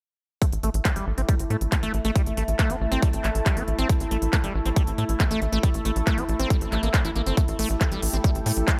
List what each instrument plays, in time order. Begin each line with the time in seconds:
0.42 acid bass A3, ambient pad A3 E4 A4, kick, closed hi-hat
0.53 analog synth bass A1, closed hi-hat
0.63 analog synth bass A1, acid bass A3, closed hi-hat
0.74 analog synth bass A1, closed hi-hat
0.81 acid bass A3, ambient pad A5, kick, clap, closed hi-hat
0.96 analog synth bass A1, acid bass G3, closed hi-hat
1.07 analog synth bass A1
1.18 analog synth bass A1, acid bass C4, closed hi-hat
1.29 acid bass G3, kick, closed hi-hat
1.39 analog synth bass A1, closed hi-hat
1.50 analog synth bass A2, acid bass A3, closed hi-hat
1.61 analog synth bass A1, closed hi-hat
1.72 acid bass A3, kick, clap, closed hi-hat
1.83 analog synth bass A1, acid bass A3, closed hi-hat
1.94 analog synth bass A1, closed hi-hat
2.05 analog synth bass A1, acid bass A3, closed hi-hat
2.16 acid bass G3, kick, closed hi-hat
2.26 analog synth bass A1, closed hi-hat
2.37 analog synth bass A1, acid bass A3, closed hi-hat
2.48 analog synth bass A1, closed hi-hat
2.59 acid bass A3, kick, clap, closed hi-hat
2.70 analog synth bass A1, acid bass C4, closed hi-hat
2.81 analog synth bass A1
2.92 analog synth bass A1, acid bass C4, closed hi-hat
3.02 acid bass G3, kick, closed hi-hat
3.13 analog synth bass A1, closed hi-hat
3.24 analog synth bass A1, acid bass A3, clap, closed hi-hat
3.35 analog synth bass A1, closed hi-hat
3.46 acid bass G3, kick, clap, closed hi-hat
3.57 analog synth bass A1, acid bass C4, closed hi-hat
3.68 analog synth bass A1, closed hi-hat
3.79 analog synth bass A1, acid bass C4, closed hi-hat
3.89 acid bass A3, kick, closed hi-hat
4.00 analog synth bass A1, closed hi-hat
4.11 analog synth bass A1, acid bass A3, closed hi-hat
4.22 analog synth bass A1, closed hi-hat
4.29 acid bass A3, ambient pad E5, kick, clap, closed hi-hat
4.44 analog synth bass A1, acid bass G3, closed hi-hat
4.55 analog synth bass A1
4.66 analog synth bass A1, acid bass C4, closed hi-hat
4.76 acid bass G3, kick, closed hi-hat
4.87 analog synth bass A1, closed hi-hat
4.98 analog synth bass A2, acid bass A3, closed hi-hat
5.09 analog synth bass A1, closed hi-hat
5.20 acid bass A3, kick, clap, closed hi-hat
5.31 analog synth bass A1, acid bass A3, closed hi-hat
5.42 analog synth bass A1, closed hi-hat
5.53 analog synth bass A1, acid bass A3, closed hi-hat
5.63 acid bass G3, kick, closed hi-hat
5.74 analog synth bass A1, closed hi-hat
5.85 analog synth bass A1, acid bass A3, closed hi-hat
5.96 analog synth bass A1, closed hi-hat
6.07 acid bass A3, kick, clap, closed hi-hat
6.18 analog synth bass A1, acid bass C4, closed hi-hat
6.29 analog synth bass A1, closed hi-hat
6.39 analog synth bass A1, acid bass C4, closed hi-hat
6.50 acid bass G3, kick, closed hi-hat
6.61 analog synth bass A1, closed hi-hat
6.72 analog synth bass A1, acid bass A3, clap, closed hi-hat
6.83 analog synth bass A1, acid bass A#3, closed hi-hat
6.94 acid bass A3, kick, clap, closed hi-hat
7.05 analog synth bass A1, acid bass E4, closed hi-hat
7.16 analog synth bass A1, acid bass A#3, closed hi-hat
7.26 analog synth bass G1, acid bass C4, closed hi-hat
7.37 acid bass A3, ambient pad G4, kick, closed hi-hat
7.48 analog synth bass A1, closed hi-hat
7.59 analog synth bass A1, acid bass A3, open hi-hat
7.70 analog synth bass A1, closed hi-hat
7.77 ambient pad A5, kick, clap, closed hi-hat
7.81 acid bass A3
7.92 analog synth bass A1, acid bass G3, closed hi-hat
8.02 analog synth bass A1, open hi-hat
8.13 analog synth bass A1, acid bass C4, closed hi-hat
8.24 acid bass G3, kick, closed hi-hat
8.35 analog synth bass A1, closed hi-hat
8.46 analog synth bass A2, acid bass A3, open hi-hat
8.57 analog synth bass A1, closed hi-hat
8.68 acid bass A3, kick, clap, closed hi-hat